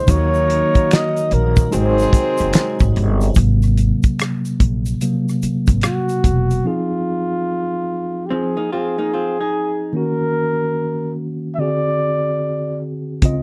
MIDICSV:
0, 0, Header, 1, 9, 480
1, 0, Start_track
1, 0, Tempo, 821918
1, 44, Time_signature, 4, 2, 24, 8
1, 7841, End_track
2, 0, Start_track
2, 0, Title_t, "Flugelhorn"
2, 0, Program_c, 0, 56
2, 0, Note_on_c, 0, 72, 90
2, 63, Note_on_c, 0, 73, 114
2, 72, Note_off_c, 0, 72, 0
2, 544, Note_on_c, 0, 75, 90
2, 553, Note_off_c, 0, 73, 0
2, 778, Note_on_c, 0, 70, 84
2, 787, Note_off_c, 0, 75, 0
2, 1011, Note_off_c, 0, 70, 0
2, 1017, Note_on_c, 0, 72, 85
2, 1707, Note_off_c, 0, 72, 0
2, 3415, Note_on_c, 0, 66, 90
2, 3896, Note_on_c, 0, 65, 80
2, 3905, Note_off_c, 0, 66, 0
2, 4824, Note_on_c, 0, 67, 56
2, 4833, Note_off_c, 0, 65, 0
2, 4859, Note_on_c, 0, 68, 76
2, 4868, Note_off_c, 0, 67, 0
2, 5091, Note_off_c, 0, 68, 0
2, 5096, Note_on_c, 0, 68, 76
2, 5787, Note_off_c, 0, 68, 0
2, 5820, Note_on_c, 0, 70, 89
2, 6509, Note_off_c, 0, 70, 0
2, 6742, Note_on_c, 0, 76, 66
2, 6774, Note_on_c, 0, 74, 92
2, 6782, Note_off_c, 0, 76, 0
2, 7489, Note_off_c, 0, 74, 0
2, 7841, End_track
3, 0, Start_track
3, 0, Title_t, "Hollow-body jazz guitar"
3, 0, Program_c, 1, 26
3, 4850, Note_on_c, 1, 60, 61
3, 4854, Note_on_c, 1, 53, 52
3, 4991, Note_off_c, 1, 60, 0
3, 4994, Note_off_c, 1, 53, 0
3, 5004, Note_on_c, 1, 63, 58
3, 5008, Note_on_c, 1, 58, 44
3, 5084, Note_off_c, 1, 63, 0
3, 5086, Note_off_c, 1, 58, 0
3, 5095, Note_on_c, 1, 65, 72
3, 5099, Note_on_c, 1, 60, 59
3, 5234, Note_off_c, 1, 65, 0
3, 5236, Note_off_c, 1, 60, 0
3, 5246, Note_on_c, 1, 63, 63
3, 5249, Note_on_c, 1, 58, 58
3, 5325, Note_off_c, 1, 63, 0
3, 5326, Note_off_c, 1, 58, 0
3, 5334, Note_on_c, 1, 65, 58
3, 5339, Note_on_c, 1, 60, 53
3, 5474, Note_off_c, 1, 65, 0
3, 5476, Note_off_c, 1, 60, 0
3, 5492, Note_on_c, 1, 63, 45
3, 5493, Note_on_c, 1, 68, 49
3, 5795, Note_off_c, 1, 68, 0
3, 5796, Note_off_c, 1, 63, 0
3, 7841, End_track
4, 0, Start_track
4, 0, Title_t, "Tine electric piano"
4, 0, Program_c, 2, 4
4, 0, Control_c, 2, 64, 127
4, 38, Note_on_c, 2, 51, 65
4, 46, Note_on_c, 2, 63, 54
4, 52, Control_c, 2, 64, 0
4, 54, Note_on_c, 2, 66, 59
4, 62, Note_on_c, 2, 73, 71
4, 136, Control_c, 2, 64, 127
4, 982, Note_off_c, 2, 51, 0
4, 986, Note_off_c, 2, 63, 0
4, 990, Note_off_c, 2, 66, 0
4, 994, Note_off_c, 2, 73, 0
4, 996, Note_on_c, 2, 56, 62
4, 1004, Note_on_c, 2, 63, 57
4, 1011, Note_on_c, 2, 66, 59
4, 1012, Control_c, 2, 64, 0
4, 1017, Note_on_c, 2, 72, 76
4, 1102, Control_c, 2, 64, 127
4, 1941, Note_off_c, 2, 56, 0
4, 1945, Note_off_c, 2, 63, 0
4, 1948, Note_off_c, 2, 66, 0
4, 1951, Note_off_c, 2, 72, 0
4, 1967, Note_on_c, 2, 48, 52
4, 1970, Control_c, 2, 64, 0
4, 1972, Note_on_c, 2, 54, 49
4, 1975, Note_on_c, 2, 58, 58
4, 2085, Control_c, 2, 64, 127
4, 2309, Note_off_c, 2, 48, 0
4, 2311, Note_off_c, 2, 54, 0
4, 2313, Note_off_c, 2, 58, 0
4, 2930, Note_on_c, 2, 48, 44
4, 2933, Note_on_c, 2, 54, 43
4, 2934, Note_on_c, 2, 58, 49
4, 3144, Note_off_c, 2, 48, 0
4, 3145, Note_off_c, 2, 54, 0
4, 3146, Note_off_c, 2, 58, 0
4, 3874, Note_on_c, 2, 53, 50
4, 3884, Note_on_c, 2, 60, 47
4, 3889, Note_on_c, 2, 63, 46
4, 3891, Control_c, 2, 64, 0
4, 3895, Note_on_c, 2, 68, 56
4, 4005, Control_c, 2, 64, 127
4, 5776, Note_off_c, 2, 53, 0
4, 5780, Note_off_c, 2, 60, 0
4, 5783, Note_off_c, 2, 63, 0
4, 5786, Note_off_c, 2, 68, 0
4, 5797, Note_on_c, 2, 51, 52
4, 5803, Note_on_c, 2, 58, 46
4, 5811, Control_c, 2, 64, 0
4, 5811, Note_on_c, 2, 61, 49
4, 5820, Note_on_c, 2, 66, 56
4, 5926, Control_c, 2, 64, 127
4, 6741, Note_off_c, 2, 51, 0
4, 6744, Note_off_c, 2, 58, 0
4, 6748, Note_off_c, 2, 61, 0
4, 6753, Note_off_c, 2, 66, 0
4, 6763, Note_on_c, 2, 50, 52
4, 6767, Note_on_c, 2, 60, 49
4, 6770, Control_c, 2, 64, 0
4, 6778, Note_on_c, 2, 66, 50
4, 6785, Note_on_c, 2, 68, 56
4, 6879, Control_c, 2, 64, 127
4, 7704, Note_off_c, 2, 50, 0
4, 7706, Note_off_c, 2, 60, 0
4, 7712, Note_off_c, 2, 66, 0
4, 7715, Note_off_c, 2, 68, 0
4, 7720, Note_on_c, 2, 49, 66
4, 7728, Note_on_c, 2, 60, 59
4, 7733, Control_c, 2, 64, 0
4, 7735, Note_on_c, 2, 65, 57
4, 7741, Note_on_c, 2, 75, 70
4, 7820, Control_c, 2, 64, 127
4, 7841, Note_off_c, 2, 49, 0
4, 7841, Note_off_c, 2, 60, 0
4, 7841, Note_off_c, 2, 65, 0
4, 7841, Note_off_c, 2, 75, 0
4, 7841, End_track
5, 0, Start_track
5, 0, Title_t, "Horn section"
5, 0, Program_c, 3, 61
5, 43, Note_on_c, 3, 63, 61
5, 44, Note_on_c, 3, 58, 62
5, 44, Note_on_c, 3, 70, 67
5, 45, Note_on_c, 3, 54, 64
5, 749, Note_off_c, 3, 58, 0
5, 749, Note_off_c, 3, 63, 0
5, 749, Note_off_c, 3, 70, 0
5, 750, Note_off_c, 3, 54, 0
5, 1004, Note_on_c, 3, 56, 77
5, 1004, Note_on_c, 3, 68, 84
5, 1006, Note_on_c, 3, 60, 73
5, 1007, Note_on_c, 3, 51, 77
5, 1710, Note_off_c, 3, 56, 0
5, 1710, Note_off_c, 3, 60, 0
5, 1710, Note_off_c, 3, 68, 0
5, 1711, Note_off_c, 3, 51, 0
5, 7841, End_track
6, 0, Start_track
6, 0, Title_t, "Tonewheel organ"
6, 0, Program_c, 4, 16
6, 0, Note_on_c, 4, 63, 70
6, 40, Note_on_c, 4, 58, 61
6, 43, Note_on_c, 4, 54, 53
6, 992, Note_off_c, 4, 58, 0
6, 994, Note_off_c, 4, 54, 0
6, 1004, Note_on_c, 4, 48, 70
6, 1008, Note_on_c, 4, 54, 61
6, 1008, Note_on_c, 4, 56, 65
6, 1941, Note_off_c, 4, 63, 0
6, 1954, Note_off_c, 4, 48, 0
6, 1956, Note_off_c, 4, 54, 0
6, 1956, Note_off_c, 4, 56, 0
6, 7841, End_track
7, 0, Start_track
7, 0, Title_t, "Upright bass"
7, 0, Program_c, 5, 32
7, 50, Note_on_c, 5, 39, 96
7, 356, Note_off_c, 5, 39, 0
7, 769, Note_on_c, 5, 34, 88
7, 956, Note_off_c, 5, 34, 0
7, 1011, Note_on_c, 5, 32, 95
7, 1197, Note_off_c, 5, 32, 0
7, 1403, Note_on_c, 5, 30, 86
7, 1470, Note_off_c, 5, 30, 0
7, 1642, Note_on_c, 5, 32, 92
7, 1709, Note_off_c, 5, 32, 0
7, 1733, Note_on_c, 5, 31, 93
7, 1919, Note_off_c, 5, 31, 0
7, 1967, Note_on_c, 5, 32, 105
7, 2274, Note_off_c, 5, 32, 0
7, 2690, Note_on_c, 5, 34, 80
7, 2877, Note_off_c, 5, 34, 0
7, 3317, Note_on_c, 5, 32, 80
7, 3386, Note_off_c, 5, 32, 0
7, 3647, Note_on_c, 5, 28, 77
7, 3835, Note_off_c, 5, 28, 0
7, 7725, Note_on_c, 5, 37, 69
7, 7841, Note_off_c, 5, 37, 0
7, 7841, End_track
8, 0, Start_track
8, 0, Title_t, "Muted upright bass strokes"
8, 1247, Note_on_c, 9, 29, 46
8, 1305, Note_off_c, 9, 29, 0
8, 3169, Note_on_c, 9, 29, 46
8, 3228, Note_off_c, 9, 29, 0
8, 7841, End_track
9, 0, Start_track
9, 0, Title_t, "Drums"
9, 43, Note_on_c, 9, 82, 66
9, 46, Note_on_c, 9, 36, 117
9, 46, Note_on_c, 9, 42, 83
9, 102, Note_off_c, 9, 82, 0
9, 104, Note_off_c, 9, 36, 0
9, 105, Note_off_c, 9, 42, 0
9, 199, Note_on_c, 9, 82, 43
9, 258, Note_off_c, 9, 82, 0
9, 291, Note_on_c, 9, 42, 82
9, 350, Note_off_c, 9, 42, 0
9, 436, Note_on_c, 9, 82, 37
9, 440, Note_on_c, 9, 36, 84
9, 441, Note_on_c, 9, 42, 41
9, 495, Note_off_c, 9, 82, 0
9, 498, Note_off_c, 9, 36, 0
9, 500, Note_off_c, 9, 42, 0
9, 531, Note_on_c, 9, 42, 83
9, 533, Note_on_c, 9, 26, 61
9, 533, Note_on_c, 9, 82, 61
9, 545, Note_on_c, 9, 38, 103
9, 589, Note_off_c, 9, 42, 0
9, 592, Note_off_c, 9, 26, 0
9, 592, Note_off_c, 9, 82, 0
9, 603, Note_off_c, 9, 38, 0
9, 679, Note_on_c, 9, 42, 31
9, 684, Note_on_c, 9, 82, 46
9, 738, Note_off_c, 9, 42, 0
9, 743, Note_off_c, 9, 82, 0
9, 766, Note_on_c, 9, 42, 72
9, 824, Note_off_c, 9, 42, 0
9, 913, Note_on_c, 9, 82, 52
9, 915, Note_on_c, 9, 36, 99
9, 916, Note_on_c, 9, 42, 41
9, 971, Note_off_c, 9, 82, 0
9, 974, Note_off_c, 9, 36, 0
9, 974, Note_off_c, 9, 42, 0
9, 1007, Note_on_c, 9, 42, 86
9, 1007, Note_on_c, 9, 82, 72
9, 1065, Note_off_c, 9, 42, 0
9, 1066, Note_off_c, 9, 82, 0
9, 1157, Note_on_c, 9, 42, 30
9, 1164, Note_on_c, 9, 82, 47
9, 1174, Note_on_c, 9, 38, 32
9, 1215, Note_off_c, 9, 42, 0
9, 1222, Note_off_c, 9, 82, 0
9, 1232, Note_off_c, 9, 38, 0
9, 1243, Note_on_c, 9, 36, 93
9, 1248, Note_on_c, 9, 42, 64
9, 1250, Note_on_c, 9, 82, 52
9, 1301, Note_off_c, 9, 36, 0
9, 1307, Note_off_c, 9, 42, 0
9, 1309, Note_off_c, 9, 82, 0
9, 1388, Note_on_c, 9, 82, 57
9, 1401, Note_on_c, 9, 42, 46
9, 1447, Note_off_c, 9, 82, 0
9, 1460, Note_off_c, 9, 42, 0
9, 1477, Note_on_c, 9, 42, 95
9, 1481, Note_on_c, 9, 26, 63
9, 1481, Note_on_c, 9, 82, 62
9, 1490, Note_on_c, 9, 38, 110
9, 1535, Note_off_c, 9, 42, 0
9, 1539, Note_off_c, 9, 26, 0
9, 1539, Note_off_c, 9, 82, 0
9, 1549, Note_off_c, 9, 38, 0
9, 1633, Note_on_c, 9, 82, 42
9, 1637, Note_on_c, 9, 42, 35
9, 1638, Note_on_c, 9, 36, 95
9, 1691, Note_off_c, 9, 82, 0
9, 1695, Note_off_c, 9, 42, 0
9, 1696, Note_off_c, 9, 36, 0
9, 1730, Note_on_c, 9, 42, 80
9, 1788, Note_off_c, 9, 42, 0
9, 1874, Note_on_c, 9, 82, 51
9, 1885, Note_on_c, 9, 42, 51
9, 1933, Note_off_c, 9, 82, 0
9, 1944, Note_off_c, 9, 42, 0
9, 1954, Note_on_c, 9, 82, 65
9, 1963, Note_on_c, 9, 42, 69
9, 1964, Note_on_c, 9, 36, 110
9, 2012, Note_off_c, 9, 82, 0
9, 2022, Note_off_c, 9, 36, 0
9, 2022, Note_off_c, 9, 42, 0
9, 2116, Note_on_c, 9, 82, 38
9, 2117, Note_on_c, 9, 42, 35
9, 2124, Note_on_c, 9, 37, 33
9, 2174, Note_off_c, 9, 82, 0
9, 2175, Note_off_c, 9, 42, 0
9, 2183, Note_off_c, 9, 37, 0
9, 2205, Note_on_c, 9, 42, 76
9, 2205, Note_on_c, 9, 82, 41
9, 2263, Note_off_c, 9, 42, 0
9, 2263, Note_off_c, 9, 82, 0
9, 2352, Note_on_c, 9, 82, 32
9, 2359, Note_on_c, 9, 36, 84
9, 2359, Note_on_c, 9, 42, 41
9, 2410, Note_off_c, 9, 82, 0
9, 2417, Note_off_c, 9, 36, 0
9, 2417, Note_off_c, 9, 42, 0
9, 2448, Note_on_c, 9, 42, 81
9, 2450, Note_on_c, 9, 26, 58
9, 2450, Note_on_c, 9, 82, 56
9, 2462, Note_on_c, 9, 37, 93
9, 2507, Note_off_c, 9, 42, 0
9, 2509, Note_off_c, 9, 26, 0
9, 2509, Note_off_c, 9, 82, 0
9, 2521, Note_off_c, 9, 37, 0
9, 2600, Note_on_c, 9, 42, 30
9, 2601, Note_on_c, 9, 82, 42
9, 2658, Note_off_c, 9, 42, 0
9, 2659, Note_off_c, 9, 82, 0
9, 2687, Note_on_c, 9, 36, 85
9, 2688, Note_on_c, 9, 42, 66
9, 2746, Note_off_c, 9, 36, 0
9, 2747, Note_off_c, 9, 42, 0
9, 2835, Note_on_c, 9, 82, 52
9, 2839, Note_on_c, 9, 42, 38
9, 2894, Note_off_c, 9, 82, 0
9, 2897, Note_off_c, 9, 42, 0
9, 2927, Note_on_c, 9, 42, 77
9, 2928, Note_on_c, 9, 82, 65
9, 2985, Note_off_c, 9, 42, 0
9, 2986, Note_off_c, 9, 82, 0
9, 3088, Note_on_c, 9, 82, 42
9, 3092, Note_on_c, 9, 37, 29
9, 3147, Note_off_c, 9, 82, 0
9, 3151, Note_off_c, 9, 37, 0
9, 3167, Note_on_c, 9, 82, 51
9, 3170, Note_on_c, 9, 42, 59
9, 3226, Note_off_c, 9, 82, 0
9, 3229, Note_off_c, 9, 42, 0
9, 3310, Note_on_c, 9, 82, 49
9, 3315, Note_on_c, 9, 36, 71
9, 3321, Note_on_c, 9, 42, 46
9, 3369, Note_off_c, 9, 82, 0
9, 3374, Note_off_c, 9, 36, 0
9, 3379, Note_off_c, 9, 42, 0
9, 3396, Note_on_c, 9, 42, 80
9, 3406, Note_on_c, 9, 26, 59
9, 3406, Note_on_c, 9, 82, 60
9, 3409, Note_on_c, 9, 37, 107
9, 3454, Note_off_c, 9, 42, 0
9, 3465, Note_off_c, 9, 26, 0
9, 3465, Note_off_c, 9, 82, 0
9, 3468, Note_off_c, 9, 37, 0
9, 3557, Note_on_c, 9, 82, 39
9, 3559, Note_on_c, 9, 42, 32
9, 3615, Note_off_c, 9, 82, 0
9, 3617, Note_off_c, 9, 42, 0
9, 3644, Note_on_c, 9, 36, 73
9, 3646, Note_on_c, 9, 42, 70
9, 3651, Note_on_c, 9, 82, 38
9, 3703, Note_off_c, 9, 36, 0
9, 3705, Note_off_c, 9, 42, 0
9, 3709, Note_off_c, 9, 82, 0
9, 3800, Note_on_c, 9, 82, 44
9, 3801, Note_on_c, 9, 42, 42
9, 3858, Note_off_c, 9, 82, 0
9, 3859, Note_off_c, 9, 42, 0
9, 7720, Note_on_c, 9, 42, 67
9, 7722, Note_on_c, 9, 36, 89
9, 7779, Note_off_c, 9, 42, 0
9, 7780, Note_off_c, 9, 36, 0
9, 7841, End_track
0, 0, End_of_file